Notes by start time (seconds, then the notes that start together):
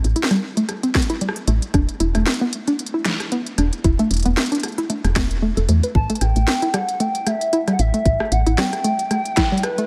0.04 A1, closed hi-hat
0.16 E4, closed hi-hat
0.23 snare
0.31 G3, cross-stick, closed hi-hat
0.57 A3, closed hi-hat
0.69 cross-stick, closed hi-hat
0.83 C4, closed hi-hat
0.95 kick, snare
1.02 closed hi-hat
1.10 E4, closed hi-hat
1.21 G3, closed hi-hat
1.29 cross-stick
1.36 closed hi-hat
1.48 A1 A3, closed hi-hat
1.62 closed hi-hat
1.74 E1 D4, kick, cross-stick, closed hi-hat
1.89 closed hi-hat
2.00 E1 E4, closed hi-hat
2.15 E1 A3, cross-stick, closed hi-hat
2.26 snare, closed hi-hat
2.34 closed hi-hat
2.41 B3
2.53 closed hi-hat
2.67 D4, closed hi-hat
2.79 closed hi-hat
2.86 closed hi-hat
2.94 E4
3.05 A3, snare, closed hi-hat
3.20 cross-stick, closed hi-hat
3.32 B3, closed hi-hat
3.46 closed hi-hat
3.58 E1 D4, cross-stick, closed hi-hat
3.73 closed hi-hat
3.84 E1 E4, kick, closed hi-hat
3.99 A3, closed hi-hat
4.11 E1, closed hi-hat
4.14 closed hi-hat
4.17 closed hi-hat
4.20 closed hi-hat
4.23 closed hi-hat
4.26 E1 B3, closed hi-hat
4.37 snare, closed hi-hat
4.46 closed hi-hat
4.52 D4, closed hi-hat
4.55 closed hi-hat
4.60 cross-stick, closed hi-hat
4.63 closed hi-hat
4.68 closed hi-hat
4.72 closed hi-hat
4.78 E4, closed hi-hat
4.90 A3, closed hi-hat
5.04 E1, cross-stick, closed hi-hat
5.16 A3, kick, snare, closed hi-hat
5.31 closed hi-hat
5.42 A3
5.57 E1 A4, closed hi-hat
5.69 E2 A3, closed hi-hat
5.83 B4, closed hi-hat
5.95 A1 A5, kick
6.10 A3, closed hi-hat
6.15 A5, closed hi-hat
6.21 A1 G5, cross-stick, closed hi-hat
6.36 A1 A3, closed hi-hat
6.48 snare, closed hi-hat
6.62 E4, closed hi-hat
6.74 G3 F#5, cross-stick, closed hi-hat
6.89 closed hi-hat
7.00 A3 G5, closed hi-hat
7.15 closed hi-hat
7.26 A3 E5, cross-stick, closed hi-hat
7.41 closed hi-hat
7.53 E4, closed hi-hat
7.68 G3, cross-stick, closed hi-hat
7.73 F#5
7.79 A1 E5, closed hi-hat
7.94 A3, closed hi-hat
8.05 A1, kick, closed hi-hat
8.20 A3, cross-stick
8.32 A1 F#5, closed hi-hat
8.47 A1 E4, closed hi-hat
8.58 G3 G5, snare, closed hi-hat
8.73 cross-stick, closed hi-hat
8.84 A3, closed hi-hat
8.99 closed hi-hat
9.11 A3, cross-stick, closed hi-hat
9.25 closed hi-hat
9.37 E4, kick, snare, closed hi-hat
9.52 G3
9.58 closed hi-hat
9.63 B4, cross-stick, closed hi-hat
9.78 A3, closed hi-hat